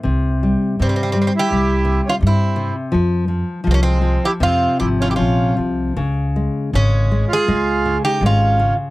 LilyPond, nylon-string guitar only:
\new Staff \with { instrumentName = "Nylon-string guitar" } { \clef bass \time 2/4 \key des \lydian \tempo 4 = 81 c8 g8 c8 g8 | g8 c8 g8 c8 | f8 f8 f8 f8 | c8 f8 f8 f8 |
des8 aes8 des8 aes8 | aes8 des8 aes8 des8 | }